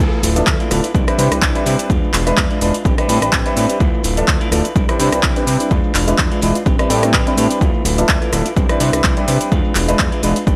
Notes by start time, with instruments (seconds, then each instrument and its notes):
0.00 clean electric guitar A3 E4 F4 B4
0.12 maracas
0.23 analog synth bass D1, clean electric guitar A3 E4 F4 B4, open hi-hat, maracas, shaker
0.36 grand piano F3 B3 D4 A4 E5, closed hi-hat, maracas, shaker
0.47 analog synth bass D2, kick, clap, shaker
0.60 clean electric guitar A3 E4 F4 B4, closed hi-hat, maracas
0.70 analog synth bass D1, grand piano F3 B3 D4 E4 A4, clean electric guitar A3 E4 F4 B4, cross-stick, open hi-hat, maracas, shaker
0.83 clean electric guitar E4 F4 B4, closed hi-hat, maracas, shaker
0.94 analog synth bass C2, clean electric guitar G3 D4 E4 B4, kick, maracas, shaker
1.07 grand piano G3 C4 D4 E4 B4, clean electric guitar D4 E4 B4, cross-stick, closed hi-hat, maracas
1.18 analog synth bass C3, clean electric guitar G3 D4 E4 B4, grand piano G3 C4 D4 E4 B4, open hi-hat, maracas, shaker
1.31 analog synth bass C2, grand piano G3 C4 D4 E4 B4, cross-stick, closed hi-hat, maracas, shaker
1.42 analog synth bass C2, clean electric guitar G3 D4 E4 B4, kick, clap, shaker
1.55 grand piano G3 C4 D4 E4 B4, closed hi-hat, maracas
1.65 analog synth bass C3, clean electric guitar G3 D4 E4 B4, open hi-hat, maracas, shaker
1.78 clean electric guitar D4 E4 B4, closed hi-hat, shaker, maracas
1.89 analog synth bass E2, clean electric guitar G#3 D4 F4 B4, kick, maracas, shaker
2.04 maracas
2.13 analog synth bass E1, clean electric guitar G#3 D4 F4 B4, clap, open hi-hat, shaker, maracas
2.26 grand piano G#3 D4 F4 B4 E5, closed hi-hat, shaker, maracas
2.37 analog synth bass E2, kick, clap, maracas, shaker
2.50 clean electric guitar G#3 D4 F4 B4, closed hi-hat, maracas
2.61 analog synth bass E1, clean electric guitar G#3 D4 F4 B4, grand piano G#3 D4 E4 F4 B4, open hi-hat, shaker, maracas
2.74 clean electric guitar D4 F4 B4, closed hi-hat, shaker, maracas
2.85 analog synth bass A1, clean electric guitar C4 D4 G4 B4, kick, maracas, shaker
2.97 grand piano G3 C4 D4 E4 B4, clean electric guitar D4 G4 B4, cross-stick, closed hi-hat, maracas
3.08 analog synth bass A2, grand piano G3 C4 D4 E4 B4, clean electric guitar C4 D4 G4 B4, open hi-hat, maracas, shaker
3.21 analog synth bass A1, grand piano G3 C4 D4 E4 B4, cross-stick, closed hi-hat, maracas, shaker
3.32 analog synth bass A1, clean electric guitar C4 D4 G4 B4, kick, clap, shaker
3.45 grand piano G3 C4 D4 E4 B4, closed hi-hat, maracas
3.56 analog synth bass A2, clean electric guitar C4 D4 G4 B4, open hi-hat, maracas, shaker
3.69 clean electric guitar D4 G4 B4, closed hi-hat, maracas, shaker
3.80 analog synth bass D2, clean electric guitar A3 E4 F4 B4, kick, maracas, shaker
3.94 maracas
4.03 analog synth bass D1, clean electric guitar A3 E4 F4 B4, open hi-hat, maracas, shaker
4.17 grand piano F3 B3 D4 A4 E5, closed hi-hat, maracas, shaker
4.28 analog synth bass D2, kick, clap, shaker
4.40 clean electric guitar A3 E4 F4 B4, closed hi-hat, maracas
4.51 analog synth bass D1, grand piano F3 B3 D4 E4 A4, clean electric guitar A3 E4 F4 B4, cross-stick, open hi-hat, maracas, shaker
4.64 clean electric guitar E4 F4 B4, closed hi-hat, maracas, shaker
4.75 analog synth bass C2, clean electric guitar G3 D4 E4 B4, kick, shaker, maracas
4.88 grand piano G3 C4 D4 E4 B4, clean electric guitar D4 E4 B4, cross-stick, closed hi-hat, maracas
4.99 analog synth bass C3, clean electric guitar G3 D4 E4 B4, grand piano G3 C4 D4 E4 B4, open hi-hat, shaker, maracas
5.12 analog synth bass C2, grand piano G3 C4 D4 E4 B4, cross-stick, closed hi-hat, maracas, shaker
5.23 analog synth bass C2, clean electric guitar D4 E4 B4, kick, clap, shaker
5.36 grand piano G3 C4 D4 E4 B4, closed hi-hat, maracas
5.46 analog synth bass C3, clean electric guitar G3 D4 E4 B4, open hi-hat, maracas, shaker
5.59 clean electric guitar D4 E4 B4, closed hi-hat, shaker, maracas
5.70 analog synth bass E2, clean electric guitar G#3 D4 F4 B4, kick, maracas, shaker
5.84 maracas
5.94 analog synth bass E1, clean electric guitar G#3 D4 F4 B4, clap, open hi-hat, maracas, shaker
6.07 grand piano G#3 D4 F4 B4 E5, closed hi-hat, shaker, maracas
6.18 analog synth bass E2, kick, clap, shaker
6.31 clean electric guitar G#3 D4 F4 B4, closed hi-hat, maracas
6.42 analog synth bass E1, clean electric guitar G#3 D4 F4 B4, grand piano G#3 D4 E4 F4 B4, open hi-hat, maracas, shaker
6.55 clean electric guitar D4 F4 B4, closed hi-hat, maracas, shaker
6.66 analog synth bass A1, clean electric guitar C4 D4 G4 B4, kick, shaker, maracas
6.78 grand piano G3 C4 D4 E4 B4, clean electric guitar D4 G4 B4, cross-stick, closed hi-hat, maracas
6.89 analog synth bass A2, grand piano G3 C4 D4 E4 B4, clean electric guitar C4 D4 G4 B4, open hi-hat, maracas, shaker
7.02 grand piano G3 C4 D4 E4 B4, cross-stick, closed hi-hat, maracas, shaker
7.13 analog synth bass A1, clean electric guitar C4 D4 G4 B4, kick, clap, maracas, shaker
7.26 grand piano G3 C4 D4 E4 B4, closed hi-hat, maracas
7.37 analog synth bass A2, clean electric guitar C4 D4 G4 B4, open hi-hat, maracas, shaker
7.50 clean electric guitar D4 G4 B4, closed hi-hat, shaker, maracas
7.61 analog synth bass D2, clean electric guitar A3 E4 F4 B4, kick, maracas, shaker
7.74 maracas
7.84 analog synth bass D1, clean electric guitar A3 E4 F4 B4, open hi-hat, maracas, shaker
7.98 grand piano F3 B3 D4 A4 E5, closed hi-hat, shaker, maracas
8.09 analog synth bass D2, kick, clap, shaker
8.21 clean electric guitar A3 E4 F4 B4, closed hi-hat, maracas
8.32 analog synth bass D1, grand piano F3 B3 D4 E4 A4, clean electric guitar A3 E4 F4 B4, cross-stick, open hi-hat, maracas, shaker
8.45 clean electric guitar E4 F4 B4, closed hi-hat, shaker, maracas
8.56 analog synth bass C2, clean electric guitar G3 D4 E4 B4, kick, shaker, maracas
8.69 grand piano G3 C4 D4 E4 B4, clean electric guitar D4 E4 B4, cross-stick, closed hi-hat, maracas
8.80 analog synth bass C3, clean electric guitar G3 D4 E4 B4, grand piano G3 C4 D4 E4 B4, open hi-hat, maracas, shaker
8.93 analog synth bass C2, grand piano G3 C4 D4 E4 B4, cross-stick, closed hi-hat, maracas, shaker
9.04 analog synth bass C2, clean electric guitar G3 D4 E4 B4, kick, clap, shaker
9.17 grand piano G3 C4 D4 E4 B4, closed hi-hat, maracas
9.27 analog synth bass C3, clean electric guitar G3 D4 E4 B4, open hi-hat, shaker, maracas
9.40 clean electric guitar D4 E4 B4, closed hi-hat, maracas, shaker
9.51 analog synth bass E2, clean electric guitar G#3 D4 F4 B4, kick, shaker, maracas
9.64 maracas
9.75 analog synth bass E1, clean electric guitar G#3 D4 F4 B4, clap, open hi-hat, maracas, shaker
9.88 grand piano G#3 D4 F4 B4 E5, closed hi-hat, maracas, shaker
9.99 analog synth bass E2, kick, clap, shaker
10.12 clean electric guitar G#3 D4 F4 B4, closed hi-hat, maracas
10.23 analog synth bass E1, clean electric guitar G#3 D4 F4 B4, grand piano G#3 D4 E4 F4 B4, open hi-hat, maracas, shaker
10.36 clean electric guitar D4 F4 B4, closed hi-hat, maracas, shaker
10.47 analog synth bass A1, clean electric guitar C4 D4 G4 B4, kick, maracas, shaker